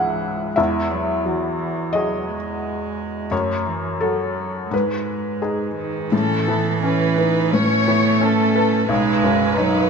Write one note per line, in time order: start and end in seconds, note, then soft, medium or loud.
0.00 0.54 C#2 medium
0.00 0.61 G#2 soft
0.00 0.56 E3 soft
0.00 0.54 C#4 soft
0.00 0.54 G#4 soft
0.00 0.56 E5 medium
0.00 0.60 F#5 medium
0.56 3.27 E2 soft
0.56 0.92 G#3 medium
0.56 1.90 E5 medium
0.90 1.27 F#3 soft
1.26 1.95 E3 soft
1.26 2.35 F#3 soft
1.93 2.30 F#3 soft
1.93 3.28 F#4 soft
1.93 3.28 G#4 soft
1.93 3.27 D#5 medium
2.29 3.32 G#3 soft
3.31 4.68 F#2 soft
3.31 3.67 A3 soft
3.31 3.98 C#5 medium
3.66 4.03 E3 soft
4.01 4.70 F#3 soft
4.01 4.68 F#4 soft
4.01 4.67 A4 medium
4.70 6.08 G#2 soft
4.70 5.74 G#3 soft
4.70 5.39 B4 soft
5.42 6.08 D#4 soft
5.42 6.08 G#4 soft
5.76 6.13 D#3 medium
6.12 7.49 A2 soft
6.12 7.54 E3 medium
6.12 6.49 C#4 soft
6.12 6.79 A4 soft
6.47 7.03 E3 soft
6.47 6.81 B3 soft
6.82 7.18 C#4 soft
6.82 7.39 C#4 soft
6.82 7.51 B4 soft
7.17 7.54 D#4 soft
7.17 7.74 B4 soft
7.52 8.86 A2 soft
7.52 8.88 A3 medium
7.52 7.88 C#4 soft
7.52 8.22 C#5 soft
7.87 8.43 E3 soft
7.87 8.23 B3 soft
8.21 8.76 C#4 soft
8.21 8.90 C#4 soft
8.21 8.90 A4 soft
8.56 8.90 B4 soft
8.89 9.90 B1 medium
8.89 9.60 G#3 medium
8.89 9.26 D#4 medium
8.89 9.90 B4 soft
9.23 9.78 F#2 soft
9.23 9.60 C#4 medium
9.57 9.90 F#3 medium
9.57 9.90 D#4 soft
9.57 9.90 D#4 medium